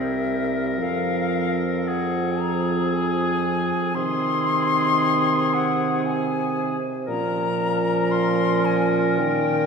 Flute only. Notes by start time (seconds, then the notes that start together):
Already playing: E5
0.80 F5
1.86 F#5
2.39 A#5
2.91 G#5
3.95 C6
5.54 F#5
6.06 G#5
7.08 A#5
8.11 C6
8.65 G#5
9.17 G5